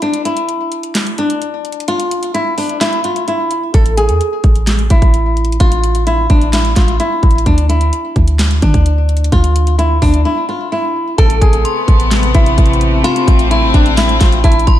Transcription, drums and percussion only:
0.02 closed hi-hat medium
0.14 closed hi-hat medium
0.25 closed hi-hat loud
0.37 closed hi-hat medium
0.49 closed hi-hat medium
0.72 closed hi-hat medium
0.83 closed hi-hat medium
0.95 snare loud
0.95 clap medium
0.95 closed hi-hat medium
1.07 closed hi-hat medium
1.18 closed hi-hat medium
1.30 closed hi-hat medium
1.42 closed hi-hat medium
1.65 closed hi-hat soft
1.72 closed hi-hat medium
1.80 closed hi-hat medium
1.88 closed hi-hat medium
2.00 closed hi-hat medium
2.11 closed hi-hat medium
2.23 closed hi-hat medium
2.35 closed hi-hat medium
2.58 open hi-hat medium
2.69 closed hi-hat medium
2.81 snare loud
2.81 clap medium
2.81 closed hi-hat medium
2.93 closed hi-hat medium
3.04 closed hi-hat medium
3.16 closed hi-hat medium
3.28 closed hi-hat medium
3.51 closed hi-hat medium
3.74 kick loud
3.74 closed hi-hat medium
3.86 closed hi-hat medium
3.98 closed hi-hat medium
4.09 closed hi-hat medium
4.21 closed hi-hat medium
4.44 kick medium
4.44 closed hi-hat soft
4.55 closed hi-hat medium
4.67 snare loud
4.67 clap medium
4.67 closed hi-hat medium
4.79 closed hi-hat medium
4.90 kick loud
4.90 closed hi-hat medium
5.02 kick medium
5.02 closed hi-hat medium
5.14 closed hi-hat medium
5.37 closed hi-hat soft
5.45 closed hi-hat soft
5.52 closed hi-hat medium
5.60 kick loud
5.60 closed hi-hat medium
5.72 closed hi-hat medium
5.84 closed hi-hat medium
5.95 closed hi-hat medium
6.07 closed hi-hat medium
6.30 kick loud
6.30 closed hi-hat soft
6.42 closed hi-hat medium
6.53 snare loud
6.53 clap medium
6.53 closed hi-hat medium
6.65 closed hi-hat medium
6.76 kick loud
6.76 snare loud
6.76 clap medium
6.76 closed hi-hat medium
6.88 closed hi-hat medium
7.00 closed hi-hat medium
7.23 kick loud
7.23 closed hi-hat soft
7.31 closed hi-hat medium
7.38 closed hi-hat medium
7.46 kick loud
7.46 closed hi-hat medium
7.58 closed hi-hat medium
7.70 closed hi-hat medium
7.81 closed hi-hat medium
7.93 closed hi-hat medium
8.16 kick medium
8.16 closed hi-hat soft
8.28 closed hi-hat medium
8.39 snare loud
8.39 clap medium
8.39 closed hi-hat medium
8.51 closed hi-hat medium
8.62 kick loud
8.62 closed hi-hat medium
8.74 kick medium
8.74 closed hi-hat medium
8.86 closed hi-hat medium
9.09 closed hi-hat soft
9.17 closed hi-hat medium
9.24 closed hi-hat medium
9.32 kick loud
9.32 closed hi-hat medium
9.44 closed hi-hat medium
9.56 closed hi-hat medium
9.67 closed hi-hat medium
9.79 closed hi-hat medium
10.02 kick loud
10.02 open hi-hat medium
10.14 closed hi-hat medium
11.18 kick loud
11.18 closed hi-hat medium
11.30 closed hi-hat medium
11.41 kick loud
11.41 closed hi-hat medium
11.53 closed hi-hat medium
11.65 closed hi-hat medium
11.88 kick loud
11.88 closed hi-hat medium
12.00 closed hi-hat medium
12.11 snare loud
12.11 clap medium
12.11 closed hi-hat medium
12.23 closed hi-hat medium
12.35 kick loud
12.35 closed hi-hat medium
12.46 closed hi-hat medium
12.58 kick medium
12.58 closed hi-hat medium
12.66 closed hi-hat medium
12.73 closed hi-hat soft
12.81 closed hi-hat medium
13.04 closed hi-hat medium
13.16 closed hi-hat medium
13.28 kick loud
13.28 closed hi-hat loud
13.39 closed hi-hat medium
13.51 closed hi-hat medium
13.74 kick loud
13.74 closed hi-hat medium
13.86 closed hi-hat medium
13.97 snare loud
13.97 clap loud
13.97 closed hi-hat medium
14.09 closed hi-hat medium
14.21 kick loud
14.21 snare loud
14.21 clap medium
14.21 closed hi-hat medium
14.32 closed hi-hat medium
14.44 kick medium
14.44 closed hi-hat medium
14.52 closed hi-hat medium
14.60 closed hi-hat soft
14.67 kick loud
14.67 closed hi-hat medium

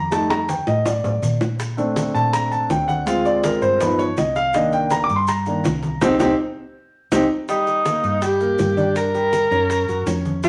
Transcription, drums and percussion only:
0.12 high bongo medium
0.12 high conga soft
0.12 maracas medium
0.30 high bongo loud
0.30 high conga soft
0.30 maracas soft
0.49 high conga medium
0.49 maracas medium
0.67 low bongo medium
0.67 high conga soft
0.67 maracas soft
0.86 low bongo medium
0.86 high conga soft
0.86 low conga medium
0.86 maracas medium
1.04 high conga soft
1.04 low conga medium
1.04 maracas soft
1.22 high conga medium
1.22 maracas medium
1.41 low bongo medium
1.41 maracas soft
1.59 high bongo medium
1.59 high conga soft
1.59 maracas medium
1.78 high bongo soft
1.78 high conga soft
1.78 maracas soft
1.96 high bongo medium
1.96 high conga medium
1.96 maracas medium
2.15 high conga soft
2.15 maracas soft
2.33 high bongo medium
2.33 high conga soft
2.33 maracas medium
2.52 high bongo soft
2.52 high conga soft
2.52 maracas soft
2.70 high bongo soft
2.70 low bongo medium
2.70 high conga medium
2.70 maracas medium
2.88 high bongo soft
2.88 high conga medium
2.88 maracas soft
3.07 high bongo medium
3.07 maracas medium
3.25 high bongo soft
3.25 high conga soft
3.25 maracas soft
3.44 high bongo medium
3.44 high conga loud
3.44 maracas medium
3.62 high conga soft
3.62 maracas soft
3.80 high bongo medium
3.80 high conga soft
3.80 low conga medium
3.80 maracas medium
3.99 high bongo soft
3.99 high conga soft
3.99 maracas soft
4.17 high bongo soft
4.17 low bongo medium
4.17 high conga medium
4.17 maracas medium
4.36 high bongo soft
4.36 maracas soft
4.53 high bongo medium
4.53 high conga soft
4.53 maracas medium
4.72 high bongo soft
4.72 high conga soft
4.72 maracas soft
4.90 high bongo medium
4.90 high conga medium
4.90 maracas medium
5.09 high conga soft
5.09 maracas soft
5.27 high bongo medium
5.27 high conga soft
5.27 maracas medium
5.46 high bongo soft
5.46 high conga soft
5.46 maracas soft
5.64 high bongo soft
5.64 low bongo medium
5.64 high conga medium
5.64 maracas medium
5.83 high bongo soft
5.83 high conga medium
5.83 maracas soft
6.01 low bongo medium
6.01 low conga loud
6.01 maracas loud
6.19 low bongo medium
6.19 low conga loud
6.19 maracas loud
7.12 low bongo loud
7.12 low conga loud
7.12 maracas medium
7.49 high bongo medium
7.49 high conga soft
7.49 maracas medium
7.67 high bongo soft
7.67 high conga soft
7.67 maracas soft
7.85 high bongo medium
7.85 high conga medium
7.85 maracas medium
8.04 high bongo soft
8.04 maracas soft
8.22 high bongo medium
8.22 high conga soft
8.22 maracas medium
8.40 high bongo soft
8.40 high conga soft
8.40 maracas soft
8.58 high bongo soft
8.58 low bongo medium
8.58 high conga medium
8.58 maracas medium
8.77 high conga medium
8.77 maracas soft
8.96 high bongo medium
8.96 high conga soft
8.96 maracas medium
9.14 high bongo soft
9.14 high conga soft
9.14 maracas soft
9.33 high bongo medium
9.33 high conga medium
9.33 maracas medium
9.51 high bongo soft
9.51 maracas soft
9.70 high bongo medium
9.70 high conga soft
9.70 maracas medium
9.88 high bongo soft
9.88 high conga soft
9.88 maracas soft
10.07 high bongo soft
10.07 low bongo medium
10.07 high conga soft
10.07 maracas medium
10.25 high conga medium
10.25 maracas soft
10.43 high bongo medium
10.43 high conga soft
10.43 maracas medium

